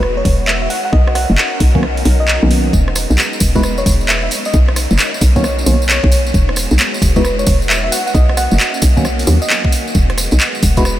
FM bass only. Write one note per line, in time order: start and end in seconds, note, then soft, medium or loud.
0.00 0.23 E1 medium
0.25 0.68 E1 medium
0.93 1.26 B1 loud
1.30 1.36 F#1 medium
1.60 2.03 B1 medium
2.06 2.39 B1 medium
2.43 2.71 B1 medium
2.73 3.06 E1 loud
3.10 3.17 B1 medium
3.41 3.84 E1 medium
3.86 4.29 E1 loud
4.54 4.87 B1 loud
4.91 4.98 F#1 medium
5.21 5.64 B1 medium
5.66 6.00 B1 medium
6.04 6.32 B1 loud
6.34 6.67 E1 loud
6.71 6.78 B1 medium
7.02 7.45 E1 medium
7.47 7.90 E1 medium
8.15 8.48 B1 loud
8.52 8.58 F#1 medium
8.82 9.25 B1 medium
9.27 9.39 D#2 loud
9.95 10.28 E1 loud
10.32 10.39 B1 medium
10.63 10.99 E1 medium